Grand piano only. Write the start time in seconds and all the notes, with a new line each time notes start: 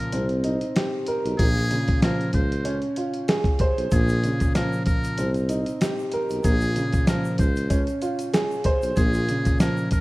Already playing: A#2 C#3 F3
0.13 C4
0.44 D#4
0.77 G4
1.08 A#4
1.39 A#2
1.72 C#3
2.02 F3
2.65 C#4
2.97 F4
3.29 G#4
3.61 C5
3.92 A#2
4.24 C#3
4.55 F3
5.18 C4
5.49 D#4
5.82 G4
6.13 A#4
6.45 A#2
6.76 C#3
7.07 F3
7.70 C#4
8.02 F4
8.34 G#4
8.66 C5
8.97 A#2
9.29 C#3
9.60 F3